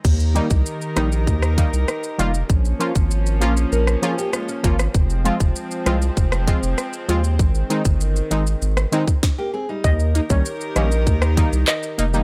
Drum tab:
CC |x---------------|----------------|----------------|----------------|
HH |--x---x---x---x-|--x---x---x---x-|--x---x---x---x-|--x---x---x-----|
SH |xxxxxxxxxxxxxxxx|xxxxxxxxxxxxxxxx|xxxxxxxxxxxxxxxx|xxxxxxxxxxxx----|
CP |----------------|----------------|----------------|----------------|
SD |------r--r--r---|---------r--r--r|------r--r--r---|---------r--o---|
BD |o--o----o-o-----|o--o----------o-|o--o----o-o-----|o--o-------oo---|

CC |----------------|
HH |--x---x---x---x-|
SH |xxxxxxxxxxxxxxxx|
CP |------------x---|
SD |------r--r--r---|
BD |o--o----o-o-----|